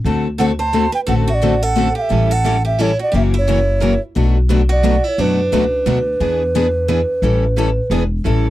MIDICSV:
0, 0, Header, 1, 6, 480
1, 0, Start_track
1, 0, Tempo, 341880
1, 74, Time_signature, 3, 2, 24, 8
1, 11934, End_track
2, 0, Start_track
2, 0, Title_t, "Ocarina"
2, 0, Program_c, 0, 79
2, 549, Note_on_c, 0, 78, 81
2, 633, Note_off_c, 0, 78, 0
2, 833, Note_on_c, 0, 81, 99
2, 1286, Note_off_c, 0, 81, 0
2, 1328, Note_on_c, 0, 79, 91
2, 1412, Note_off_c, 0, 79, 0
2, 1522, Note_on_c, 0, 78, 85
2, 1606, Note_off_c, 0, 78, 0
2, 1819, Note_on_c, 0, 76, 76
2, 1887, Note_on_c, 0, 74, 82
2, 1901, Note_off_c, 0, 76, 0
2, 2298, Note_on_c, 0, 78, 88
2, 2319, Note_off_c, 0, 74, 0
2, 2768, Note_off_c, 0, 78, 0
2, 2777, Note_on_c, 0, 77, 85
2, 2830, Note_on_c, 0, 76, 93
2, 2845, Note_off_c, 0, 77, 0
2, 3266, Note_on_c, 0, 78, 89
2, 3287, Note_off_c, 0, 76, 0
2, 3732, Note_off_c, 0, 78, 0
2, 3741, Note_on_c, 0, 76, 80
2, 3954, Note_on_c, 0, 73, 77
2, 3975, Note_off_c, 0, 76, 0
2, 4226, Note_off_c, 0, 73, 0
2, 4248, Note_on_c, 0, 74, 81
2, 4402, Note_off_c, 0, 74, 0
2, 4444, Note_on_c, 0, 76, 74
2, 4528, Note_off_c, 0, 76, 0
2, 4750, Note_on_c, 0, 73, 71
2, 5622, Note_off_c, 0, 73, 0
2, 6627, Note_on_c, 0, 74, 97
2, 7135, Note_on_c, 0, 73, 92
2, 7156, Note_off_c, 0, 74, 0
2, 7318, Note_on_c, 0, 71, 78
2, 7339, Note_off_c, 0, 73, 0
2, 11135, Note_off_c, 0, 71, 0
2, 11934, End_track
3, 0, Start_track
3, 0, Title_t, "Steel-string acoustic guitar"
3, 0, Program_c, 1, 25
3, 537, Note_on_c, 1, 69, 67
3, 618, Note_off_c, 1, 69, 0
3, 829, Note_on_c, 1, 72, 80
3, 1284, Note_off_c, 1, 72, 0
3, 1295, Note_on_c, 1, 71, 75
3, 1365, Note_off_c, 1, 71, 0
3, 1496, Note_on_c, 1, 69, 79
3, 1578, Note_off_c, 1, 69, 0
3, 1790, Note_on_c, 1, 66, 76
3, 2281, Note_off_c, 1, 66, 0
3, 2281, Note_on_c, 1, 69, 69
3, 2731, Note_off_c, 1, 69, 0
3, 2737, Note_on_c, 1, 67, 69
3, 3242, Note_off_c, 1, 67, 0
3, 3242, Note_on_c, 1, 69, 80
3, 3710, Note_off_c, 1, 69, 0
3, 3716, Note_on_c, 1, 67, 64
3, 3909, Note_off_c, 1, 67, 0
3, 3909, Note_on_c, 1, 64, 65
3, 4197, Note_off_c, 1, 64, 0
3, 4203, Note_on_c, 1, 66, 64
3, 4370, Note_off_c, 1, 66, 0
3, 4375, Note_on_c, 1, 67, 70
3, 4457, Note_off_c, 1, 67, 0
3, 4687, Note_on_c, 1, 64, 66
3, 5590, Note_off_c, 1, 64, 0
3, 6586, Note_on_c, 1, 66, 78
3, 7073, Note_off_c, 1, 66, 0
3, 7073, Note_on_c, 1, 64, 76
3, 7282, Note_off_c, 1, 64, 0
3, 7282, Note_on_c, 1, 62, 66
3, 10157, Note_off_c, 1, 62, 0
3, 11934, End_track
4, 0, Start_track
4, 0, Title_t, "Steel-string acoustic guitar"
4, 0, Program_c, 2, 25
4, 74, Note_on_c, 2, 57, 59
4, 76, Note_on_c, 2, 50, 64
4, 79, Note_on_c, 2, 66, 69
4, 80, Note_on_c, 2, 60, 66
4, 90, Note_on_c, 2, 69, 66
4, 367, Note_off_c, 2, 57, 0
4, 368, Note_off_c, 2, 50, 0
4, 369, Note_off_c, 2, 66, 0
4, 370, Note_off_c, 2, 60, 0
4, 375, Note_off_c, 2, 69, 0
4, 545, Note_on_c, 2, 57, 77
4, 548, Note_on_c, 2, 50, 71
4, 551, Note_on_c, 2, 60, 80
4, 557, Note_on_c, 2, 66, 78
4, 557, Note_on_c, 2, 69, 82
4, 705, Note_off_c, 2, 57, 0
4, 706, Note_off_c, 2, 50, 0
4, 708, Note_off_c, 2, 60, 0
4, 710, Note_off_c, 2, 66, 0
4, 710, Note_off_c, 2, 69, 0
4, 1028, Note_on_c, 2, 50, 87
4, 1038, Note_on_c, 2, 66, 88
4, 1039, Note_on_c, 2, 57, 85
4, 1044, Note_on_c, 2, 60, 81
4, 1049, Note_on_c, 2, 69, 99
4, 1186, Note_off_c, 2, 50, 0
4, 1191, Note_off_c, 2, 57, 0
4, 1191, Note_off_c, 2, 66, 0
4, 1194, Note_off_c, 2, 60, 0
4, 1196, Note_off_c, 2, 69, 0
4, 1519, Note_on_c, 2, 57, 68
4, 1522, Note_on_c, 2, 50, 65
4, 1527, Note_on_c, 2, 60, 66
4, 1529, Note_on_c, 2, 66, 69
4, 1537, Note_on_c, 2, 69, 62
4, 1809, Note_off_c, 2, 57, 0
4, 1810, Note_off_c, 2, 50, 0
4, 1813, Note_off_c, 2, 60, 0
4, 1814, Note_off_c, 2, 66, 0
4, 1818, Note_off_c, 2, 69, 0
4, 2006, Note_on_c, 2, 50, 89
4, 2008, Note_on_c, 2, 60, 79
4, 2010, Note_on_c, 2, 57, 90
4, 2012, Note_on_c, 2, 66, 89
4, 2021, Note_on_c, 2, 69, 85
4, 2155, Note_off_c, 2, 50, 0
4, 2155, Note_off_c, 2, 60, 0
4, 2157, Note_off_c, 2, 57, 0
4, 2157, Note_off_c, 2, 66, 0
4, 2162, Note_off_c, 2, 69, 0
4, 2494, Note_on_c, 2, 50, 80
4, 2494, Note_on_c, 2, 66, 84
4, 2497, Note_on_c, 2, 57, 83
4, 2499, Note_on_c, 2, 60, 88
4, 2505, Note_on_c, 2, 69, 94
4, 2639, Note_off_c, 2, 50, 0
4, 2639, Note_off_c, 2, 66, 0
4, 2640, Note_off_c, 2, 57, 0
4, 2641, Note_off_c, 2, 60, 0
4, 2644, Note_off_c, 2, 69, 0
4, 2967, Note_on_c, 2, 52, 66
4, 2970, Note_on_c, 2, 55, 67
4, 2973, Note_on_c, 2, 61, 67
4, 2975, Note_on_c, 2, 64, 73
4, 2980, Note_on_c, 2, 69, 69
4, 3253, Note_off_c, 2, 52, 0
4, 3254, Note_off_c, 2, 55, 0
4, 3256, Note_off_c, 2, 61, 0
4, 3256, Note_off_c, 2, 64, 0
4, 3259, Note_off_c, 2, 69, 0
4, 3427, Note_on_c, 2, 52, 85
4, 3433, Note_on_c, 2, 55, 77
4, 3433, Note_on_c, 2, 61, 81
4, 3434, Note_on_c, 2, 64, 81
4, 3441, Note_on_c, 2, 69, 91
4, 3585, Note_off_c, 2, 52, 0
4, 3588, Note_off_c, 2, 55, 0
4, 3588, Note_off_c, 2, 61, 0
4, 3588, Note_off_c, 2, 64, 0
4, 3592, Note_off_c, 2, 69, 0
4, 3910, Note_on_c, 2, 52, 87
4, 3912, Note_on_c, 2, 55, 90
4, 3918, Note_on_c, 2, 61, 85
4, 3919, Note_on_c, 2, 64, 94
4, 3920, Note_on_c, 2, 69, 99
4, 4066, Note_off_c, 2, 52, 0
4, 4068, Note_off_c, 2, 55, 0
4, 4070, Note_off_c, 2, 61, 0
4, 4071, Note_off_c, 2, 64, 0
4, 4071, Note_off_c, 2, 69, 0
4, 4395, Note_on_c, 2, 54, 63
4, 4399, Note_on_c, 2, 61, 64
4, 4403, Note_on_c, 2, 64, 65
4, 4410, Note_on_c, 2, 70, 72
4, 4686, Note_off_c, 2, 54, 0
4, 4689, Note_off_c, 2, 61, 0
4, 4690, Note_off_c, 2, 64, 0
4, 4694, Note_off_c, 2, 70, 0
4, 4875, Note_on_c, 2, 54, 82
4, 4879, Note_on_c, 2, 61, 85
4, 4885, Note_on_c, 2, 64, 90
4, 4887, Note_on_c, 2, 70, 87
4, 5028, Note_off_c, 2, 54, 0
4, 5031, Note_off_c, 2, 61, 0
4, 5034, Note_off_c, 2, 64, 0
4, 5034, Note_off_c, 2, 70, 0
4, 5339, Note_on_c, 2, 54, 89
4, 5344, Note_on_c, 2, 61, 77
4, 5352, Note_on_c, 2, 70, 96
4, 5353, Note_on_c, 2, 64, 88
4, 5500, Note_off_c, 2, 54, 0
4, 5503, Note_off_c, 2, 61, 0
4, 5507, Note_off_c, 2, 64, 0
4, 5507, Note_off_c, 2, 70, 0
4, 5840, Note_on_c, 2, 47, 59
4, 5842, Note_on_c, 2, 54, 63
4, 5846, Note_on_c, 2, 57, 64
4, 5849, Note_on_c, 2, 62, 75
4, 5849, Note_on_c, 2, 66, 63
4, 5852, Note_on_c, 2, 71, 73
4, 6129, Note_off_c, 2, 47, 0
4, 6130, Note_off_c, 2, 54, 0
4, 6132, Note_off_c, 2, 57, 0
4, 6133, Note_off_c, 2, 62, 0
4, 6133, Note_off_c, 2, 66, 0
4, 6135, Note_off_c, 2, 71, 0
4, 6304, Note_on_c, 2, 54, 80
4, 6306, Note_on_c, 2, 47, 86
4, 6307, Note_on_c, 2, 62, 86
4, 6311, Note_on_c, 2, 57, 82
4, 6312, Note_on_c, 2, 71, 82
4, 6313, Note_on_c, 2, 66, 81
4, 6463, Note_off_c, 2, 54, 0
4, 6464, Note_off_c, 2, 47, 0
4, 6465, Note_off_c, 2, 62, 0
4, 6467, Note_off_c, 2, 57, 0
4, 6467, Note_off_c, 2, 71, 0
4, 6468, Note_off_c, 2, 66, 0
4, 6781, Note_on_c, 2, 57, 90
4, 6782, Note_on_c, 2, 47, 73
4, 6787, Note_on_c, 2, 54, 88
4, 6789, Note_on_c, 2, 62, 83
4, 6790, Note_on_c, 2, 66, 91
4, 6797, Note_on_c, 2, 71, 92
4, 6942, Note_off_c, 2, 47, 0
4, 6942, Note_off_c, 2, 57, 0
4, 6944, Note_off_c, 2, 54, 0
4, 6946, Note_off_c, 2, 62, 0
4, 6946, Note_off_c, 2, 66, 0
4, 6950, Note_off_c, 2, 71, 0
4, 7275, Note_on_c, 2, 47, 64
4, 7278, Note_on_c, 2, 62, 62
4, 7280, Note_on_c, 2, 57, 61
4, 7281, Note_on_c, 2, 54, 65
4, 7286, Note_on_c, 2, 66, 72
4, 7291, Note_on_c, 2, 71, 69
4, 7566, Note_off_c, 2, 47, 0
4, 7568, Note_off_c, 2, 62, 0
4, 7569, Note_off_c, 2, 54, 0
4, 7569, Note_off_c, 2, 57, 0
4, 7572, Note_off_c, 2, 66, 0
4, 7574, Note_off_c, 2, 71, 0
4, 7756, Note_on_c, 2, 47, 82
4, 7758, Note_on_c, 2, 54, 92
4, 7758, Note_on_c, 2, 57, 90
4, 7766, Note_on_c, 2, 71, 83
4, 7767, Note_on_c, 2, 62, 89
4, 7772, Note_on_c, 2, 66, 89
4, 7909, Note_off_c, 2, 47, 0
4, 7910, Note_off_c, 2, 54, 0
4, 7910, Note_off_c, 2, 57, 0
4, 7914, Note_off_c, 2, 71, 0
4, 7915, Note_off_c, 2, 62, 0
4, 7917, Note_off_c, 2, 66, 0
4, 8225, Note_on_c, 2, 54, 80
4, 8226, Note_on_c, 2, 47, 86
4, 8235, Note_on_c, 2, 57, 78
4, 8241, Note_on_c, 2, 62, 94
4, 8242, Note_on_c, 2, 66, 92
4, 8243, Note_on_c, 2, 71, 89
4, 8384, Note_off_c, 2, 47, 0
4, 8384, Note_off_c, 2, 54, 0
4, 8388, Note_off_c, 2, 57, 0
4, 8392, Note_off_c, 2, 62, 0
4, 8392, Note_off_c, 2, 66, 0
4, 8392, Note_off_c, 2, 71, 0
4, 8712, Note_on_c, 2, 59, 66
4, 8714, Note_on_c, 2, 52, 61
4, 8716, Note_on_c, 2, 62, 73
4, 8720, Note_on_c, 2, 68, 75
4, 8725, Note_on_c, 2, 71, 78
4, 9005, Note_off_c, 2, 59, 0
4, 9006, Note_off_c, 2, 52, 0
4, 9007, Note_off_c, 2, 62, 0
4, 9009, Note_off_c, 2, 68, 0
4, 9011, Note_off_c, 2, 71, 0
4, 9204, Note_on_c, 2, 52, 76
4, 9205, Note_on_c, 2, 59, 87
4, 9214, Note_on_c, 2, 62, 95
4, 9215, Note_on_c, 2, 68, 85
4, 9215, Note_on_c, 2, 71, 90
4, 9353, Note_off_c, 2, 52, 0
4, 9354, Note_off_c, 2, 59, 0
4, 9358, Note_off_c, 2, 62, 0
4, 9359, Note_off_c, 2, 68, 0
4, 9359, Note_off_c, 2, 71, 0
4, 9663, Note_on_c, 2, 52, 83
4, 9665, Note_on_c, 2, 59, 84
4, 9665, Note_on_c, 2, 71, 96
4, 9668, Note_on_c, 2, 62, 95
4, 9668, Note_on_c, 2, 68, 93
4, 9823, Note_off_c, 2, 52, 0
4, 9824, Note_off_c, 2, 59, 0
4, 9824, Note_off_c, 2, 71, 0
4, 9825, Note_off_c, 2, 62, 0
4, 9825, Note_off_c, 2, 68, 0
4, 10140, Note_on_c, 2, 52, 63
4, 10145, Note_on_c, 2, 64, 69
4, 10146, Note_on_c, 2, 55, 62
4, 10150, Note_on_c, 2, 61, 63
4, 10152, Note_on_c, 2, 69, 69
4, 10439, Note_off_c, 2, 52, 0
4, 10441, Note_off_c, 2, 64, 0
4, 10442, Note_off_c, 2, 55, 0
4, 10444, Note_off_c, 2, 61, 0
4, 10445, Note_off_c, 2, 69, 0
4, 10619, Note_on_c, 2, 52, 81
4, 10625, Note_on_c, 2, 55, 79
4, 10626, Note_on_c, 2, 69, 92
4, 10629, Note_on_c, 2, 64, 78
4, 10633, Note_on_c, 2, 61, 80
4, 10781, Note_off_c, 2, 52, 0
4, 10784, Note_off_c, 2, 55, 0
4, 10784, Note_off_c, 2, 69, 0
4, 10786, Note_off_c, 2, 64, 0
4, 10788, Note_off_c, 2, 61, 0
4, 11102, Note_on_c, 2, 59, 79
4, 11103, Note_on_c, 2, 52, 88
4, 11105, Note_on_c, 2, 71, 88
4, 11106, Note_on_c, 2, 62, 84
4, 11109, Note_on_c, 2, 68, 87
4, 11262, Note_off_c, 2, 52, 0
4, 11262, Note_off_c, 2, 59, 0
4, 11264, Note_off_c, 2, 62, 0
4, 11264, Note_off_c, 2, 71, 0
4, 11266, Note_off_c, 2, 68, 0
4, 11570, Note_on_c, 2, 52, 63
4, 11577, Note_on_c, 2, 64, 67
4, 11580, Note_on_c, 2, 61, 71
4, 11583, Note_on_c, 2, 55, 62
4, 11586, Note_on_c, 2, 69, 74
4, 11874, Note_off_c, 2, 52, 0
4, 11877, Note_off_c, 2, 64, 0
4, 11879, Note_off_c, 2, 61, 0
4, 11880, Note_off_c, 2, 55, 0
4, 11882, Note_off_c, 2, 69, 0
4, 11934, End_track
5, 0, Start_track
5, 0, Title_t, "Steel-string acoustic guitar"
5, 0, Program_c, 3, 25
5, 4412, Note_on_c, 3, 49, 64
5, 4412, Note_on_c, 3, 52, 64
5, 4412, Note_on_c, 3, 58, 66
5, 4422, Note_on_c, 3, 66, 67
5, 4695, Note_off_c, 3, 49, 0
5, 4695, Note_off_c, 3, 52, 0
5, 4695, Note_off_c, 3, 58, 0
5, 4700, Note_off_c, 3, 66, 0
5, 4882, Note_on_c, 3, 52, 87
5, 4884, Note_on_c, 3, 49, 80
5, 4895, Note_on_c, 3, 58, 89
5, 4896, Note_on_c, 3, 66, 86
5, 5032, Note_off_c, 3, 52, 0
5, 5033, Note_off_c, 3, 49, 0
5, 5039, Note_off_c, 3, 58, 0
5, 5039, Note_off_c, 3, 66, 0
5, 5354, Note_on_c, 3, 49, 74
5, 5366, Note_on_c, 3, 52, 79
5, 5368, Note_on_c, 3, 58, 74
5, 5379, Note_on_c, 3, 66, 85
5, 5508, Note_off_c, 3, 49, 0
5, 5514, Note_off_c, 3, 52, 0
5, 5515, Note_off_c, 3, 58, 0
5, 5521, Note_off_c, 3, 66, 0
5, 11934, End_track
6, 0, Start_track
6, 0, Title_t, "Upright bass"
6, 0, Program_c, 4, 32
6, 62, Note_on_c, 4, 38, 85
6, 1218, Note_off_c, 4, 38, 0
6, 1515, Note_on_c, 4, 33, 86
6, 2666, Note_off_c, 4, 33, 0
6, 2956, Note_on_c, 4, 33, 84
6, 4106, Note_off_c, 4, 33, 0
6, 4401, Note_on_c, 4, 30, 90
6, 5550, Note_off_c, 4, 30, 0
6, 5841, Note_on_c, 4, 35, 93
6, 6989, Note_off_c, 4, 35, 0
6, 7276, Note_on_c, 4, 42, 82
6, 7658, Note_off_c, 4, 42, 0
6, 7753, Note_on_c, 4, 37, 68
6, 8161, Note_off_c, 4, 37, 0
6, 8227, Note_on_c, 4, 38, 74
6, 8637, Note_off_c, 4, 38, 0
6, 8708, Note_on_c, 4, 40, 89
6, 9862, Note_off_c, 4, 40, 0
6, 10137, Note_on_c, 4, 33, 90
6, 10911, Note_off_c, 4, 33, 0
6, 11089, Note_on_c, 4, 28, 81
6, 11483, Note_off_c, 4, 28, 0
6, 11584, Note_on_c, 4, 33, 90
6, 11934, Note_off_c, 4, 33, 0
6, 11934, End_track
0, 0, End_of_file